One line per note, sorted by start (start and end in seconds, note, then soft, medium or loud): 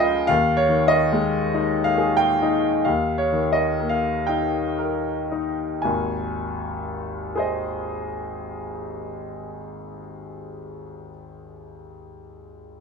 0.00 0.25 C#2 medium
0.00 0.31 F3 soft
0.00 0.31 G#3 soft
0.00 0.32 F4 soft
0.00 0.13 G#4 soft
0.00 0.28 D#5 medium
0.00 0.27 F5 medium
0.00 0.32 G5 medium
0.00 0.31 G#5 medium
0.00 0.31 A#5 medium
0.27 2.81 D#2 medium
0.27 0.58 F5 medium
0.57 0.88 C#5 medium
0.69 1.35 D#3 soft
0.88 1.84 D#5 medium
1.12 1.79 G#3 soft
1.54 2.23 D#4 medium
1.84 2.18 F5 medium
1.98 2.68 G#4 soft
2.17 2.85 G5 medium
2.42 2.86 D#4 soft
2.85 5.81 D#2 medium
2.85 3.19 F5 medium
3.18 3.54 C#5 medium
3.32 4.08 D#3 soft
3.53 3.89 D#5 medium
3.79 4.58 A#3 soft
3.89 4.26 F5 medium
4.27 5.12 D#4 soft
4.27 5.84 G5 medium
4.78 5.64 A#4 soft
5.32 5.84 D#4 soft
5.82 9.57 G#1 soft
5.82 9.57 D#2 soft
5.82 9.54 G#5 soft
7.35 11.08 G#4 soft
7.35 11.10 C5 soft
7.35 11.12 D#5 soft